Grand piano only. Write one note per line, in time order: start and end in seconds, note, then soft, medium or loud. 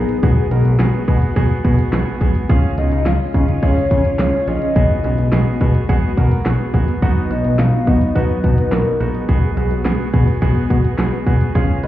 0.00 0.16 B3 medium
0.00 0.16 D#4 medium
0.00 0.16 G#4 medium
0.23 0.44 B3 loud
0.23 0.44 F#4 medium
0.23 0.44 G#4 loud
0.51 0.72 B3 medium
0.51 0.72 F#4 medium
0.51 0.72 A#4 medium
0.80 1.01 B3 medium
0.80 1.01 F#4 medium
0.80 1.01 G#4 loud
1.08 1.29 B3 medium
1.08 1.29 F#4 medium
1.08 1.29 G#4 loud
1.36 1.57 B3 loud
1.36 1.57 F#4 loud
1.36 1.57 G#4 loud
1.65 1.85 B3 medium
1.65 1.85 F#4 medium
1.65 1.86 G#4 medium
1.93 2.14 B3 medium
1.93 2.14 F#4 medium
1.93 2.14 G#4 loud
2.21 2.42 B3 medium
2.21 2.42 F#4 medium
2.21 2.42 G#4 loud
2.49 2.70 C#4 loud
2.49 2.70 F4 loud
2.49 2.70 G#4 loud
2.78 2.99 C#4 medium
2.78 2.99 F4 medium
2.78 2.99 G#4 medium
3.06 3.27 C#4 medium
3.06 3.27 F4 medium
3.06 3.27 G#4 medium
3.34 3.55 C#4 medium
3.34 3.55 F4 medium
3.34 3.55 G#4 medium
3.63 3.84 C#4 loud
3.63 3.84 F4 medium
3.63 3.84 G#4 loud
3.91 4.12 C#4 medium
3.91 4.12 F4 medium
3.91 4.12 G#4 medium
4.19 4.40 C#4 medium
4.19 4.40 F4 medium
4.19 4.40 G#4 medium
4.48 4.69 C#4 medium
4.48 4.68 F4 medium
4.48 4.69 G#4 medium
4.76 4.97 B3 loud
4.76 4.97 F#4 medium
4.76 4.97 G#4 loud
5.04 5.25 B3 medium
5.04 5.25 F#4 medium
5.04 5.25 G#4 medium
5.33 5.53 B3 medium
5.33 5.53 F#4 medium
5.33 5.53 G#4 loud
5.61 5.82 B3 medium
5.61 5.82 F#4 medium
5.61 5.82 G#4 loud
5.89 6.10 B3 loud
5.89 6.10 F#4 loud
5.89 6.10 G#4 loud
6.17 6.38 B3 medium
6.17 6.38 F#4 medium
6.17 6.38 A#4 loud
6.46 6.67 B3 medium
6.46 6.67 F#4 medium
6.46 6.67 G#4 loud
6.74 6.95 B3 medium
6.74 6.95 F#4 medium
6.74 6.95 G#4 loud
7.02 7.23 B3 loud
7.02 7.23 D#4 loud
7.02 7.23 F#4 loud
7.31 7.51 B3 medium
7.31 7.51 D#4 medium
7.31 7.51 F#4 medium
7.59 7.80 B3 medium
7.59 7.80 D#4 medium
7.59 7.80 F#4 medium
7.87 8.08 B3 medium
7.87 8.08 D#4 medium
7.87 8.08 F#4 medium
8.15 8.36 B3 medium
8.15 8.36 D#4 medium
8.15 8.36 F#4 loud
8.44 8.65 B3 medium
8.44 8.65 D#4 medium
8.44 8.65 F#4 medium
8.72 8.93 B3 medium
8.72 8.93 D#4 medium
8.72 8.93 F#4 medium
9.00 9.21 B3 medium
9.00 9.21 D#4 medium
9.00 9.21 F#4 medium
9.29 9.50 B3 loud
9.29 9.50 F#4 medium
9.29 9.50 G#4 loud
9.57 9.78 B3 medium
9.57 9.78 F#4 medium
9.57 9.78 G#4 medium
9.85 10.06 B3 medium
9.85 10.06 F#4 medium
9.85 10.06 G#4 medium
10.13 10.34 B3 medium
10.13 10.34 F#4 medium
10.13 10.34 G#4 loud
10.42 10.63 B3 loud
10.42 10.63 F#4 loud
10.42 10.63 G#4 loud
10.70 10.91 B3 medium
10.70 10.91 F#4 medium
10.70 10.91 G#4 loud
10.98 11.19 B3 medium
10.98 11.19 F#4 medium
10.98 11.19 G#4 loud
11.27 11.48 B3 medium
11.27 11.48 F#4 medium
11.27 11.48 G#4 loud
11.55 11.76 C#4 loud
11.55 11.76 F4 loud
11.55 11.76 G#4 loud
11.83 11.87 C#4 medium
11.83 11.87 F4 medium
11.83 11.87 B4 medium